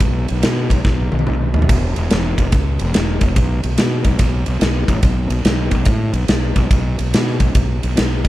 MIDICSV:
0, 0, Header, 1, 3, 480
1, 0, Start_track
1, 0, Tempo, 419287
1, 15, Time_signature, 4, 2, 24, 8
1, 9479, End_track
2, 0, Start_track
2, 0, Title_t, "Fingered electric bass"
2, 0, Program_c, 0, 33
2, 11, Note_on_c, 0, 35, 84
2, 289, Note_off_c, 0, 35, 0
2, 354, Note_on_c, 0, 35, 82
2, 492, Note_off_c, 0, 35, 0
2, 520, Note_on_c, 0, 47, 83
2, 784, Note_off_c, 0, 47, 0
2, 805, Note_on_c, 0, 35, 83
2, 955, Note_off_c, 0, 35, 0
2, 975, Note_on_c, 0, 35, 86
2, 1250, Note_off_c, 0, 35, 0
2, 1290, Note_on_c, 0, 35, 83
2, 1437, Note_off_c, 0, 35, 0
2, 1480, Note_on_c, 0, 35, 85
2, 1743, Note_off_c, 0, 35, 0
2, 1776, Note_on_c, 0, 39, 84
2, 1920, Note_off_c, 0, 39, 0
2, 1939, Note_on_c, 0, 28, 88
2, 2211, Note_off_c, 0, 28, 0
2, 2258, Note_on_c, 0, 28, 82
2, 2401, Note_off_c, 0, 28, 0
2, 2426, Note_on_c, 0, 28, 87
2, 2695, Note_off_c, 0, 28, 0
2, 2731, Note_on_c, 0, 28, 80
2, 2877, Note_off_c, 0, 28, 0
2, 2899, Note_on_c, 0, 37, 86
2, 3171, Note_off_c, 0, 37, 0
2, 3220, Note_on_c, 0, 28, 87
2, 3362, Note_off_c, 0, 28, 0
2, 3393, Note_on_c, 0, 28, 81
2, 3659, Note_off_c, 0, 28, 0
2, 3687, Note_on_c, 0, 28, 83
2, 3835, Note_off_c, 0, 28, 0
2, 3851, Note_on_c, 0, 35, 87
2, 4126, Note_off_c, 0, 35, 0
2, 4171, Note_on_c, 0, 35, 78
2, 4317, Note_off_c, 0, 35, 0
2, 4333, Note_on_c, 0, 47, 84
2, 4607, Note_off_c, 0, 47, 0
2, 4635, Note_on_c, 0, 35, 91
2, 4788, Note_off_c, 0, 35, 0
2, 4806, Note_on_c, 0, 35, 90
2, 5084, Note_off_c, 0, 35, 0
2, 5124, Note_on_c, 0, 35, 88
2, 5273, Note_off_c, 0, 35, 0
2, 5282, Note_on_c, 0, 35, 86
2, 5561, Note_off_c, 0, 35, 0
2, 5593, Note_on_c, 0, 33, 86
2, 5746, Note_off_c, 0, 33, 0
2, 5769, Note_on_c, 0, 35, 89
2, 6045, Note_off_c, 0, 35, 0
2, 6067, Note_on_c, 0, 35, 87
2, 6223, Note_off_c, 0, 35, 0
2, 6236, Note_on_c, 0, 35, 90
2, 6518, Note_off_c, 0, 35, 0
2, 6553, Note_on_c, 0, 35, 89
2, 6707, Note_off_c, 0, 35, 0
2, 6714, Note_on_c, 0, 45, 91
2, 6997, Note_off_c, 0, 45, 0
2, 7021, Note_on_c, 0, 35, 89
2, 7180, Note_off_c, 0, 35, 0
2, 7197, Note_on_c, 0, 35, 82
2, 7479, Note_off_c, 0, 35, 0
2, 7512, Note_on_c, 0, 35, 87
2, 7666, Note_off_c, 0, 35, 0
2, 7676, Note_on_c, 0, 35, 87
2, 7959, Note_off_c, 0, 35, 0
2, 8010, Note_on_c, 0, 35, 79
2, 8157, Note_off_c, 0, 35, 0
2, 8177, Note_on_c, 0, 47, 88
2, 8450, Note_off_c, 0, 47, 0
2, 8478, Note_on_c, 0, 35, 91
2, 8630, Note_off_c, 0, 35, 0
2, 8639, Note_on_c, 0, 35, 81
2, 8921, Note_off_c, 0, 35, 0
2, 8976, Note_on_c, 0, 35, 88
2, 9121, Note_off_c, 0, 35, 0
2, 9145, Note_on_c, 0, 35, 78
2, 9416, Note_off_c, 0, 35, 0
2, 9436, Note_on_c, 0, 28, 88
2, 9479, Note_off_c, 0, 28, 0
2, 9479, End_track
3, 0, Start_track
3, 0, Title_t, "Drums"
3, 3, Note_on_c, 9, 51, 84
3, 5, Note_on_c, 9, 36, 102
3, 118, Note_off_c, 9, 51, 0
3, 120, Note_off_c, 9, 36, 0
3, 324, Note_on_c, 9, 51, 64
3, 439, Note_off_c, 9, 51, 0
3, 487, Note_on_c, 9, 51, 95
3, 498, Note_on_c, 9, 38, 105
3, 602, Note_off_c, 9, 51, 0
3, 612, Note_off_c, 9, 38, 0
3, 804, Note_on_c, 9, 36, 77
3, 812, Note_on_c, 9, 51, 69
3, 918, Note_off_c, 9, 36, 0
3, 926, Note_off_c, 9, 51, 0
3, 971, Note_on_c, 9, 36, 101
3, 975, Note_on_c, 9, 38, 54
3, 1085, Note_off_c, 9, 36, 0
3, 1089, Note_off_c, 9, 38, 0
3, 1281, Note_on_c, 9, 48, 69
3, 1363, Note_off_c, 9, 48, 0
3, 1363, Note_on_c, 9, 48, 63
3, 1451, Note_on_c, 9, 47, 76
3, 1477, Note_off_c, 9, 48, 0
3, 1565, Note_off_c, 9, 47, 0
3, 1763, Note_on_c, 9, 43, 88
3, 1855, Note_off_c, 9, 43, 0
3, 1855, Note_on_c, 9, 43, 85
3, 1937, Note_on_c, 9, 49, 82
3, 1937, Note_on_c, 9, 51, 80
3, 1938, Note_on_c, 9, 36, 104
3, 1970, Note_off_c, 9, 43, 0
3, 2051, Note_off_c, 9, 49, 0
3, 2051, Note_off_c, 9, 51, 0
3, 2052, Note_off_c, 9, 36, 0
3, 2244, Note_on_c, 9, 51, 59
3, 2359, Note_off_c, 9, 51, 0
3, 2409, Note_on_c, 9, 51, 88
3, 2419, Note_on_c, 9, 38, 110
3, 2523, Note_off_c, 9, 51, 0
3, 2534, Note_off_c, 9, 38, 0
3, 2724, Note_on_c, 9, 36, 78
3, 2728, Note_on_c, 9, 51, 65
3, 2839, Note_off_c, 9, 36, 0
3, 2842, Note_off_c, 9, 51, 0
3, 2887, Note_on_c, 9, 51, 87
3, 2892, Note_on_c, 9, 36, 105
3, 3001, Note_off_c, 9, 51, 0
3, 3007, Note_off_c, 9, 36, 0
3, 3198, Note_on_c, 9, 51, 66
3, 3312, Note_off_c, 9, 51, 0
3, 3367, Note_on_c, 9, 51, 84
3, 3377, Note_on_c, 9, 38, 99
3, 3481, Note_off_c, 9, 51, 0
3, 3492, Note_off_c, 9, 38, 0
3, 3674, Note_on_c, 9, 51, 71
3, 3679, Note_on_c, 9, 36, 87
3, 3788, Note_off_c, 9, 51, 0
3, 3794, Note_off_c, 9, 36, 0
3, 3849, Note_on_c, 9, 36, 101
3, 3849, Note_on_c, 9, 51, 88
3, 3963, Note_off_c, 9, 36, 0
3, 3963, Note_off_c, 9, 51, 0
3, 4160, Note_on_c, 9, 51, 68
3, 4275, Note_off_c, 9, 51, 0
3, 4322, Note_on_c, 9, 51, 93
3, 4332, Note_on_c, 9, 38, 113
3, 4436, Note_off_c, 9, 51, 0
3, 4447, Note_off_c, 9, 38, 0
3, 4629, Note_on_c, 9, 51, 69
3, 4634, Note_on_c, 9, 36, 78
3, 4743, Note_off_c, 9, 51, 0
3, 4749, Note_off_c, 9, 36, 0
3, 4795, Note_on_c, 9, 51, 95
3, 4802, Note_on_c, 9, 36, 102
3, 4909, Note_off_c, 9, 51, 0
3, 4916, Note_off_c, 9, 36, 0
3, 5106, Note_on_c, 9, 51, 68
3, 5220, Note_off_c, 9, 51, 0
3, 5277, Note_on_c, 9, 51, 83
3, 5288, Note_on_c, 9, 38, 99
3, 5392, Note_off_c, 9, 51, 0
3, 5402, Note_off_c, 9, 38, 0
3, 5589, Note_on_c, 9, 36, 85
3, 5592, Note_on_c, 9, 51, 65
3, 5704, Note_off_c, 9, 36, 0
3, 5707, Note_off_c, 9, 51, 0
3, 5753, Note_on_c, 9, 51, 82
3, 5758, Note_on_c, 9, 36, 99
3, 5868, Note_off_c, 9, 51, 0
3, 5872, Note_off_c, 9, 36, 0
3, 6070, Note_on_c, 9, 51, 66
3, 6184, Note_off_c, 9, 51, 0
3, 6236, Note_on_c, 9, 51, 88
3, 6246, Note_on_c, 9, 38, 112
3, 6350, Note_off_c, 9, 51, 0
3, 6360, Note_off_c, 9, 38, 0
3, 6538, Note_on_c, 9, 51, 65
3, 6545, Note_on_c, 9, 36, 77
3, 6653, Note_off_c, 9, 51, 0
3, 6659, Note_off_c, 9, 36, 0
3, 6699, Note_on_c, 9, 51, 86
3, 6712, Note_on_c, 9, 36, 108
3, 6814, Note_off_c, 9, 51, 0
3, 6827, Note_off_c, 9, 36, 0
3, 7023, Note_on_c, 9, 51, 66
3, 7137, Note_off_c, 9, 51, 0
3, 7192, Note_on_c, 9, 51, 83
3, 7202, Note_on_c, 9, 38, 105
3, 7306, Note_off_c, 9, 51, 0
3, 7317, Note_off_c, 9, 38, 0
3, 7507, Note_on_c, 9, 51, 69
3, 7509, Note_on_c, 9, 36, 85
3, 7621, Note_off_c, 9, 51, 0
3, 7623, Note_off_c, 9, 36, 0
3, 7679, Note_on_c, 9, 36, 103
3, 7679, Note_on_c, 9, 51, 84
3, 7793, Note_off_c, 9, 36, 0
3, 7793, Note_off_c, 9, 51, 0
3, 7998, Note_on_c, 9, 51, 68
3, 8113, Note_off_c, 9, 51, 0
3, 8170, Note_on_c, 9, 51, 96
3, 8180, Note_on_c, 9, 38, 112
3, 8284, Note_off_c, 9, 51, 0
3, 8295, Note_off_c, 9, 38, 0
3, 8334, Note_on_c, 9, 38, 30
3, 8448, Note_off_c, 9, 38, 0
3, 8470, Note_on_c, 9, 51, 72
3, 8475, Note_on_c, 9, 36, 83
3, 8585, Note_off_c, 9, 51, 0
3, 8589, Note_off_c, 9, 36, 0
3, 8642, Note_on_c, 9, 51, 93
3, 8645, Note_on_c, 9, 36, 103
3, 8756, Note_off_c, 9, 51, 0
3, 8759, Note_off_c, 9, 36, 0
3, 8965, Note_on_c, 9, 51, 69
3, 9080, Note_off_c, 9, 51, 0
3, 9125, Note_on_c, 9, 51, 91
3, 9135, Note_on_c, 9, 38, 103
3, 9239, Note_off_c, 9, 51, 0
3, 9249, Note_off_c, 9, 38, 0
3, 9441, Note_on_c, 9, 51, 65
3, 9442, Note_on_c, 9, 36, 83
3, 9479, Note_off_c, 9, 36, 0
3, 9479, Note_off_c, 9, 51, 0
3, 9479, End_track
0, 0, End_of_file